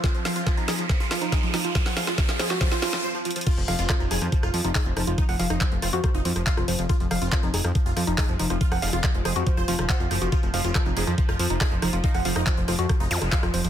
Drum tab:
CC |--------------------------------|--------------------------------|x-------------------------------|--------------------------------|
HH |x-x-o-x-x-x-o-x-x-x-o-x-x-x-o-x-|x-o-o-x-x-x-o-x-x-x-o-x-----xxxx|x-x-o-x-x-x-o-x-x-x-o-x-o-x-o-x-|x-o-o-x-x-x-o-x-x-x-o-x-x-x-o-x-|
CP |--------------------------------|--------------------------------|--------x---------------x-------|--------x---------------x-------|
SD |o---o---o---o---o---o---o---o---|o-o-o-o-o-o-o-o-o-o-o-o---------|----r---r-----r---r-----r---r---|--r---r-----r---r-----r---r-----|
BD |o-------o-------o-------o-------|o-------o-------o---------------|o-------o-------o-------o-------|o-------o-------o-------o-------|

CC |--------------------------------|--------------------------------|--------------------------------|--------------------------------|
HH |x-x-o-x-x-x-o-x-x-x-o-x-o-x-o-x-|x-o-o-x-x-x-o-x-x-x-o-x-x-x-o-x-|x-x-o-x-x-x-o-x-x-x-o-x-o-x-o-x-|x-o-o-x-x-x-o-x-x-x-o-x-x-x-o-x-|
CP |--------x---------------x-------|--------x---------------x-------|--------x---------------x-------|--------x---------------x-------|
SD |r---r-----r---r-----r---r-----r-|--r-----r---r-----r---r-----r---|----r---r-----r---r-----r---r---|--r---r-----r---r-----r---r-----|
BD |o-------o-------o-------o-------|o-------o-------o-------o-------|o-------o-------o-------o-------|o-------o-------o-------o-------|